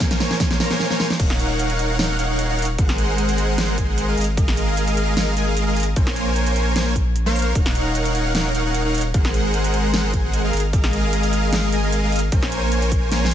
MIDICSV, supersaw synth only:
0, 0, Header, 1, 2, 480
1, 0, Start_track
1, 0, Key_signature, -5, "minor"
1, 0, Tempo, 397351
1, 1445, Time_signature, 4, 2, 24, 8
1, 16117, End_track
2, 0, Start_track
2, 0, Title_t, "Supersaw synth"
2, 0, Program_c, 0, 81
2, 0, Note_on_c, 0, 58, 79
2, 0, Note_on_c, 0, 70, 75
2, 0, Note_on_c, 0, 72, 69
2, 0, Note_on_c, 0, 73, 70
2, 0, Note_on_c, 0, 80, 89
2, 457, Note_off_c, 0, 58, 0
2, 457, Note_off_c, 0, 70, 0
2, 457, Note_off_c, 0, 72, 0
2, 457, Note_off_c, 0, 73, 0
2, 457, Note_off_c, 0, 80, 0
2, 484, Note_on_c, 0, 58, 100
2, 484, Note_on_c, 0, 72, 91
2, 484, Note_on_c, 0, 73, 91
2, 484, Note_on_c, 0, 80, 108
2, 485, Note_on_c, 0, 70, 87
2, 697, Note_off_c, 0, 58, 0
2, 697, Note_off_c, 0, 70, 0
2, 697, Note_off_c, 0, 72, 0
2, 697, Note_off_c, 0, 73, 0
2, 697, Note_off_c, 0, 80, 0
2, 724, Note_on_c, 0, 72, 87
2, 724, Note_on_c, 0, 73, 81
2, 725, Note_on_c, 0, 58, 95
2, 725, Note_on_c, 0, 70, 86
2, 725, Note_on_c, 0, 82, 106
2, 832, Note_off_c, 0, 58, 0
2, 832, Note_off_c, 0, 70, 0
2, 832, Note_off_c, 0, 72, 0
2, 832, Note_off_c, 0, 73, 0
2, 832, Note_off_c, 0, 82, 0
2, 851, Note_on_c, 0, 72, 71
2, 851, Note_on_c, 0, 73, 72
2, 852, Note_on_c, 0, 58, 76
2, 852, Note_on_c, 0, 70, 72
2, 852, Note_on_c, 0, 80, 83
2, 1061, Note_off_c, 0, 58, 0
2, 1061, Note_off_c, 0, 70, 0
2, 1061, Note_off_c, 0, 72, 0
2, 1061, Note_off_c, 0, 73, 0
2, 1061, Note_off_c, 0, 80, 0
2, 1091, Note_on_c, 0, 80, 81
2, 1092, Note_on_c, 0, 58, 73
2, 1092, Note_on_c, 0, 70, 67
2, 1092, Note_on_c, 0, 72, 68
2, 1092, Note_on_c, 0, 73, 66
2, 1297, Note_off_c, 0, 58, 0
2, 1297, Note_off_c, 0, 70, 0
2, 1297, Note_off_c, 0, 73, 0
2, 1297, Note_off_c, 0, 80, 0
2, 1298, Note_off_c, 0, 72, 0
2, 1445, Note_on_c, 0, 63, 82
2, 1445, Note_on_c, 0, 70, 72
2, 1445, Note_on_c, 0, 73, 73
2, 1445, Note_on_c, 0, 77, 72
2, 1445, Note_on_c, 0, 78, 88
2, 2377, Note_off_c, 0, 78, 0
2, 2378, Note_off_c, 0, 63, 0
2, 2378, Note_off_c, 0, 70, 0
2, 2378, Note_off_c, 0, 73, 0
2, 2378, Note_off_c, 0, 77, 0
2, 2402, Note_on_c, 0, 73, 90
2, 2403, Note_on_c, 0, 63, 101
2, 2403, Note_on_c, 0, 70, 90
2, 2403, Note_on_c, 0, 77, 89
2, 2403, Note_on_c, 0, 78, 110
2, 2616, Note_off_c, 0, 73, 0
2, 2617, Note_off_c, 0, 63, 0
2, 2617, Note_off_c, 0, 70, 0
2, 2617, Note_off_c, 0, 77, 0
2, 2617, Note_off_c, 0, 78, 0
2, 2644, Note_on_c, 0, 63, 90
2, 2644, Note_on_c, 0, 73, 86
2, 2644, Note_on_c, 0, 78, 102
2, 2645, Note_on_c, 0, 70, 82
2, 2645, Note_on_c, 0, 77, 83
2, 2752, Note_off_c, 0, 63, 0
2, 2752, Note_off_c, 0, 70, 0
2, 2752, Note_off_c, 0, 73, 0
2, 2752, Note_off_c, 0, 77, 0
2, 2752, Note_off_c, 0, 78, 0
2, 2770, Note_on_c, 0, 73, 69
2, 2771, Note_on_c, 0, 63, 78
2, 2771, Note_on_c, 0, 70, 67
2, 2771, Note_on_c, 0, 77, 69
2, 2771, Note_on_c, 0, 78, 86
2, 2980, Note_off_c, 0, 63, 0
2, 2980, Note_off_c, 0, 73, 0
2, 2981, Note_off_c, 0, 70, 0
2, 2981, Note_off_c, 0, 77, 0
2, 2981, Note_off_c, 0, 78, 0
2, 3009, Note_on_c, 0, 70, 66
2, 3009, Note_on_c, 0, 73, 70
2, 3009, Note_on_c, 0, 77, 69
2, 3009, Note_on_c, 0, 78, 79
2, 3010, Note_on_c, 0, 63, 75
2, 3216, Note_off_c, 0, 63, 0
2, 3216, Note_off_c, 0, 70, 0
2, 3216, Note_off_c, 0, 73, 0
2, 3216, Note_off_c, 0, 77, 0
2, 3216, Note_off_c, 0, 78, 0
2, 3365, Note_on_c, 0, 68, 75
2, 3365, Note_on_c, 0, 70, 75
2, 3365, Note_on_c, 0, 72, 70
2, 3365, Note_on_c, 0, 78, 85
2, 3366, Note_on_c, 0, 56, 78
2, 4297, Note_off_c, 0, 68, 0
2, 4297, Note_off_c, 0, 72, 0
2, 4298, Note_off_c, 0, 56, 0
2, 4298, Note_off_c, 0, 70, 0
2, 4298, Note_off_c, 0, 78, 0
2, 4322, Note_on_c, 0, 56, 100
2, 4322, Note_on_c, 0, 68, 88
2, 4322, Note_on_c, 0, 72, 88
2, 4323, Note_on_c, 0, 70, 92
2, 4323, Note_on_c, 0, 78, 110
2, 4536, Note_off_c, 0, 56, 0
2, 4536, Note_off_c, 0, 68, 0
2, 4536, Note_off_c, 0, 72, 0
2, 4537, Note_off_c, 0, 70, 0
2, 4537, Note_off_c, 0, 78, 0
2, 4562, Note_on_c, 0, 56, 92
2, 4562, Note_on_c, 0, 68, 88
2, 4562, Note_on_c, 0, 70, 84
2, 4563, Note_on_c, 0, 72, 84
2, 4563, Note_on_c, 0, 80, 103
2, 4671, Note_off_c, 0, 56, 0
2, 4671, Note_off_c, 0, 68, 0
2, 4671, Note_off_c, 0, 70, 0
2, 4671, Note_off_c, 0, 72, 0
2, 4671, Note_off_c, 0, 80, 0
2, 4688, Note_on_c, 0, 56, 72
2, 4688, Note_on_c, 0, 68, 69
2, 4688, Note_on_c, 0, 70, 70
2, 4688, Note_on_c, 0, 72, 71
2, 4688, Note_on_c, 0, 78, 83
2, 4899, Note_off_c, 0, 56, 0
2, 4899, Note_off_c, 0, 68, 0
2, 4899, Note_off_c, 0, 70, 0
2, 4899, Note_off_c, 0, 72, 0
2, 4899, Note_off_c, 0, 78, 0
2, 4928, Note_on_c, 0, 56, 72
2, 4928, Note_on_c, 0, 68, 65
2, 4928, Note_on_c, 0, 70, 68
2, 4928, Note_on_c, 0, 75, 68
2, 4928, Note_on_c, 0, 77, 80
2, 5135, Note_off_c, 0, 56, 0
2, 5135, Note_off_c, 0, 68, 0
2, 5135, Note_off_c, 0, 70, 0
2, 5135, Note_off_c, 0, 75, 0
2, 5135, Note_off_c, 0, 77, 0
2, 5282, Note_on_c, 0, 56, 77
2, 5282, Note_on_c, 0, 68, 71
2, 5282, Note_on_c, 0, 70, 73
2, 5282, Note_on_c, 0, 75, 71
2, 5283, Note_on_c, 0, 77, 87
2, 6216, Note_off_c, 0, 56, 0
2, 6216, Note_off_c, 0, 68, 0
2, 6216, Note_off_c, 0, 70, 0
2, 6216, Note_off_c, 0, 75, 0
2, 6216, Note_off_c, 0, 77, 0
2, 6242, Note_on_c, 0, 56, 99
2, 6242, Note_on_c, 0, 68, 91
2, 6243, Note_on_c, 0, 70, 91
2, 6243, Note_on_c, 0, 75, 92
2, 6243, Note_on_c, 0, 77, 108
2, 6456, Note_off_c, 0, 56, 0
2, 6456, Note_off_c, 0, 68, 0
2, 6457, Note_off_c, 0, 70, 0
2, 6457, Note_off_c, 0, 75, 0
2, 6457, Note_off_c, 0, 77, 0
2, 6483, Note_on_c, 0, 70, 86
2, 6484, Note_on_c, 0, 56, 91
2, 6484, Note_on_c, 0, 68, 82
2, 6484, Note_on_c, 0, 75, 84
2, 6484, Note_on_c, 0, 80, 102
2, 6591, Note_off_c, 0, 56, 0
2, 6591, Note_off_c, 0, 70, 0
2, 6591, Note_off_c, 0, 75, 0
2, 6592, Note_off_c, 0, 68, 0
2, 6592, Note_off_c, 0, 80, 0
2, 6608, Note_on_c, 0, 56, 78
2, 6608, Note_on_c, 0, 68, 70
2, 6608, Note_on_c, 0, 75, 68
2, 6608, Note_on_c, 0, 77, 85
2, 6609, Note_on_c, 0, 70, 70
2, 6819, Note_off_c, 0, 56, 0
2, 6819, Note_off_c, 0, 68, 0
2, 6819, Note_off_c, 0, 75, 0
2, 6819, Note_off_c, 0, 77, 0
2, 6820, Note_off_c, 0, 70, 0
2, 6848, Note_on_c, 0, 56, 71
2, 6848, Note_on_c, 0, 68, 69
2, 6848, Note_on_c, 0, 77, 83
2, 6849, Note_on_c, 0, 70, 70
2, 6849, Note_on_c, 0, 75, 68
2, 7055, Note_off_c, 0, 68, 0
2, 7055, Note_off_c, 0, 77, 0
2, 7056, Note_off_c, 0, 56, 0
2, 7056, Note_off_c, 0, 70, 0
2, 7056, Note_off_c, 0, 75, 0
2, 7203, Note_on_c, 0, 58, 82
2, 7203, Note_on_c, 0, 72, 75
2, 7203, Note_on_c, 0, 80, 88
2, 7204, Note_on_c, 0, 70, 76
2, 7204, Note_on_c, 0, 73, 71
2, 8136, Note_off_c, 0, 72, 0
2, 8137, Note_off_c, 0, 58, 0
2, 8137, Note_off_c, 0, 70, 0
2, 8137, Note_off_c, 0, 73, 0
2, 8137, Note_off_c, 0, 80, 0
2, 8162, Note_on_c, 0, 80, 111
2, 8163, Note_on_c, 0, 58, 99
2, 8163, Note_on_c, 0, 70, 89
2, 8163, Note_on_c, 0, 72, 90
2, 8163, Note_on_c, 0, 73, 89
2, 8376, Note_off_c, 0, 70, 0
2, 8376, Note_off_c, 0, 80, 0
2, 8377, Note_off_c, 0, 58, 0
2, 8377, Note_off_c, 0, 72, 0
2, 8377, Note_off_c, 0, 73, 0
2, 8771, Note_on_c, 0, 58, 94
2, 8771, Note_on_c, 0, 70, 82
2, 8771, Note_on_c, 0, 72, 85
2, 8771, Note_on_c, 0, 73, 85
2, 8772, Note_on_c, 0, 77, 99
2, 9097, Note_off_c, 0, 70, 0
2, 9098, Note_off_c, 0, 58, 0
2, 9098, Note_off_c, 0, 72, 0
2, 9098, Note_off_c, 0, 73, 0
2, 9098, Note_off_c, 0, 77, 0
2, 9124, Note_on_c, 0, 70, 72
2, 9124, Note_on_c, 0, 73, 75
2, 9124, Note_on_c, 0, 77, 70
2, 9124, Note_on_c, 0, 78, 84
2, 9125, Note_on_c, 0, 63, 79
2, 10057, Note_off_c, 0, 63, 0
2, 10057, Note_off_c, 0, 70, 0
2, 10057, Note_off_c, 0, 73, 0
2, 10057, Note_off_c, 0, 77, 0
2, 10057, Note_off_c, 0, 78, 0
2, 10085, Note_on_c, 0, 70, 93
2, 10085, Note_on_c, 0, 73, 93
2, 10085, Note_on_c, 0, 77, 88
2, 10085, Note_on_c, 0, 78, 114
2, 10086, Note_on_c, 0, 63, 100
2, 10298, Note_off_c, 0, 63, 0
2, 10298, Note_off_c, 0, 70, 0
2, 10298, Note_off_c, 0, 73, 0
2, 10298, Note_off_c, 0, 77, 0
2, 10298, Note_off_c, 0, 78, 0
2, 10326, Note_on_c, 0, 63, 91
2, 10326, Note_on_c, 0, 70, 84
2, 10326, Note_on_c, 0, 73, 88
2, 10326, Note_on_c, 0, 77, 82
2, 10326, Note_on_c, 0, 78, 102
2, 10432, Note_off_c, 0, 70, 0
2, 10433, Note_off_c, 0, 63, 0
2, 10433, Note_off_c, 0, 73, 0
2, 10433, Note_off_c, 0, 77, 0
2, 10433, Note_off_c, 0, 78, 0
2, 10452, Note_on_c, 0, 70, 69
2, 10453, Note_on_c, 0, 63, 77
2, 10453, Note_on_c, 0, 73, 69
2, 10453, Note_on_c, 0, 77, 69
2, 10453, Note_on_c, 0, 78, 82
2, 10661, Note_off_c, 0, 70, 0
2, 10662, Note_off_c, 0, 63, 0
2, 10662, Note_off_c, 0, 73, 0
2, 10662, Note_off_c, 0, 77, 0
2, 10662, Note_off_c, 0, 78, 0
2, 10690, Note_on_c, 0, 63, 77
2, 10690, Note_on_c, 0, 70, 68
2, 10690, Note_on_c, 0, 73, 67
2, 10690, Note_on_c, 0, 78, 78
2, 10691, Note_on_c, 0, 77, 64
2, 10896, Note_off_c, 0, 63, 0
2, 10896, Note_off_c, 0, 70, 0
2, 10896, Note_off_c, 0, 73, 0
2, 10896, Note_off_c, 0, 78, 0
2, 10897, Note_off_c, 0, 77, 0
2, 11044, Note_on_c, 0, 78, 89
2, 11045, Note_on_c, 0, 68, 73
2, 11045, Note_on_c, 0, 70, 74
2, 11045, Note_on_c, 0, 72, 76
2, 11046, Note_on_c, 0, 56, 81
2, 11977, Note_off_c, 0, 70, 0
2, 11977, Note_off_c, 0, 72, 0
2, 11977, Note_off_c, 0, 78, 0
2, 11978, Note_off_c, 0, 56, 0
2, 11978, Note_off_c, 0, 68, 0
2, 12003, Note_on_c, 0, 56, 102
2, 12004, Note_on_c, 0, 68, 91
2, 12004, Note_on_c, 0, 70, 88
2, 12004, Note_on_c, 0, 72, 92
2, 12004, Note_on_c, 0, 78, 111
2, 12217, Note_off_c, 0, 56, 0
2, 12217, Note_off_c, 0, 68, 0
2, 12217, Note_off_c, 0, 70, 0
2, 12217, Note_off_c, 0, 72, 0
2, 12217, Note_off_c, 0, 78, 0
2, 12244, Note_on_c, 0, 68, 84
2, 12244, Note_on_c, 0, 70, 83
2, 12244, Note_on_c, 0, 72, 86
2, 12245, Note_on_c, 0, 56, 92
2, 12245, Note_on_c, 0, 80, 103
2, 12351, Note_off_c, 0, 70, 0
2, 12351, Note_off_c, 0, 72, 0
2, 12352, Note_off_c, 0, 56, 0
2, 12352, Note_off_c, 0, 68, 0
2, 12352, Note_off_c, 0, 80, 0
2, 12371, Note_on_c, 0, 56, 73
2, 12371, Note_on_c, 0, 70, 70
2, 12371, Note_on_c, 0, 72, 69
2, 12371, Note_on_c, 0, 78, 85
2, 12372, Note_on_c, 0, 68, 73
2, 12581, Note_off_c, 0, 56, 0
2, 12581, Note_off_c, 0, 68, 0
2, 12581, Note_off_c, 0, 70, 0
2, 12581, Note_off_c, 0, 72, 0
2, 12581, Note_off_c, 0, 78, 0
2, 12610, Note_on_c, 0, 56, 74
2, 12610, Note_on_c, 0, 68, 68
2, 12610, Note_on_c, 0, 75, 68
2, 12610, Note_on_c, 0, 77, 81
2, 12611, Note_on_c, 0, 70, 65
2, 12816, Note_off_c, 0, 56, 0
2, 12816, Note_off_c, 0, 68, 0
2, 12816, Note_off_c, 0, 75, 0
2, 12816, Note_off_c, 0, 77, 0
2, 12817, Note_off_c, 0, 70, 0
2, 12965, Note_on_c, 0, 75, 72
2, 12965, Note_on_c, 0, 77, 86
2, 12966, Note_on_c, 0, 56, 84
2, 12966, Note_on_c, 0, 68, 72
2, 12966, Note_on_c, 0, 70, 74
2, 13898, Note_off_c, 0, 56, 0
2, 13898, Note_off_c, 0, 68, 0
2, 13898, Note_off_c, 0, 70, 0
2, 13898, Note_off_c, 0, 75, 0
2, 13898, Note_off_c, 0, 77, 0
2, 13926, Note_on_c, 0, 56, 98
2, 13926, Note_on_c, 0, 68, 88
2, 13926, Note_on_c, 0, 70, 94
2, 13926, Note_on_c, 0, 75, 87
2, 13926, Note_on_c, 0, 77, 109
2, 14138, Note_off_c, 0, 56, 0
2, 14138, Note_off_c, 0, 68, 0
2, 14138, Note_off_c, 0, 70, 0
2, 14138, Note_off_c, 0, 75, 0
2, 14138, Note_off_c, 0, 77, 0
2, 14165, Note_on_c, 0, 56, 97
2, 14165, Note_on_c, 0, 68, 89
2, 14165, Note_on_c, 0, 70, 83
2, 14165, Note_on_c, 0, 75, 85
2, 14165, Note_on_c, 0, 80, 102
2, 14272, Note_off_c, 0, 56, 0
2, 14272, Note_off_c, 0, 68, 0
2, 14272, Note_off_c, 0, 70, 0
2, 14272, Note_off_c, 0, 75, 0
2, 14272, Note_off_c, 0, 80, 0
2, 14291, Note_on_c, 0, 56, 79
2, 14291, Note_on_c, 0, 70, 72
2, 14291, Note_on_c, 0, 75, 70
2, 14291, Note_on_c, 0, 77, 82
2, 14292, Note_on_c, 0, 68, 68
2, 14500, Note_off_c, 0, 75, 0
2, 14501, Note_off_c, 0, 56, 0
2, 14501, Note_off_c, 0, 68, 0
2, 14501, Note_off_c, 0, 70, 0
2, 14501, Note_off_c, 0, 77, 0
2, 14531, Note_on_c, 0, 56, 77
2, 14531, Note_on_c, 0, 68, 66
2, 14531, Note_on_c, 0, 70, 67
2, 14532, Note_on_c, 0, 75, 68
2, 14532, Note_on_c, 0, 77, 80
2, 14737, Note_off_c, 0, 56, 0
2, 14737, Note_off_c, 0, 68, 0
2, 14737, Note_off_c, 0, 70, 0
2, 14737, Note_off_c, 0, 75, 0
2, 14737, Note_off_c, 0, 77, 0
2, 14884, Note_on_c, 0, 70, 73
2, 14884, Note_on_c, 0, 80, 87
2, 14885, Note_on_c, 0, 58, 82
2, 14885, Note_on_c, 0, 72, 75
2, 14885, Note_on_c, 0, 73, 72
2, 15817, Note_off_c, 0, 58, 0
2, 15817, Note_off_c, 0, 70, 0
2, 15817, Note_off_c, 0, 80, 0
2, 15818, Note_off_c, 0, 72, 0
2, 15818, Note_off_c, 0, 73, 0
2, 15843, Note_on_c, 0, 72, 91
2, 15844, Note_on_c, 0, 58, 98
2, 15844, Note_on_c, 0, 70, 89
2, 15844, Note_on_c, 0, 80, 112
2, 15845, Note_on_c, 0, 73, 87
2, 16057, Note_off_c, 0, 58, 0
2, 16057, Note_off_c, 0, 70, 0
2, 16057, Note_off_c, 0, 72, 0
2, 16057, Note_off_c, 0, 73, 0
2, 16057, Note_off_c, 0, 80, 0
2, 16117, End_track
0, 0, End_of_file